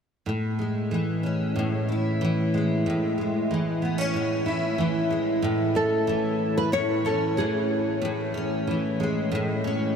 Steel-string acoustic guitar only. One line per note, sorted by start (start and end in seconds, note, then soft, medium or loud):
0.26 1.54 A2 medium
0.59 2.54 G#3 soft
0.91 2.21 E3 soft
1.23 3.82 C#4 soft
1.56 2.85 A2 medium
1.89 4.45 E4 medium
2.21 3.50 E3 medium
2.54 3.17 G#3 soft
2.86 4.12 A2 medium
3.18 5.10 G#3 soft
3.51 4.78 E3 medium
3.82 3.98 B3 soft
3.98 5.50 C#4 soft
4.14 5.41 A2 medium
4.46 7.96 E4 medium
4.78 6.07 E3 medium
5.10 6.75 G#3 medium
5.42 6.71 A2 medium
5.75 7.03 C#4 medium
6.07 7.37 E3 medium
6.72 8.00 A2 medium
7.05 8.33 C#4 medium
7.37 8.67 E3 medium
8.02 9.30 A2 medium
8.34 9.63 C#4 medium
8.67 9.96 E3 medium
9.00 9.96 G#3 medium
9.31 9.96 A2 medium
9.64 9.96 C#4 medium